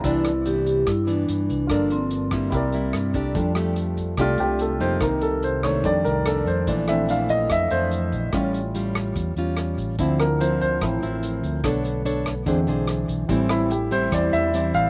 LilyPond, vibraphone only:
\new Staff \with { instrumentName = "Vibraphone" } { \time 4/4 \key c \major \tempo 4 = 145 e'4 g'8 g'8 e'8 d'4 d'8 | d'8 c'2. r8 | \key f \major r1 | r1 |
r1 | r1 | r1 | r1 |
r1 | }